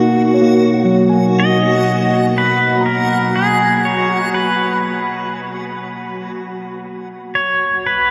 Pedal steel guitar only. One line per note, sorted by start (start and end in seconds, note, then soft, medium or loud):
0.00 0.35 F#4 medium
1.40 2.39 D#5 medium
2.38 2.83 B4 medium
2.86 3.36 A#4 medium
3.36 3.86 G#4 medium
3.85 4.34 C#5 medium
4.34 6.31 B4 medium
7.35 7.86 C#5 medium
7.87 8.11 B4 medium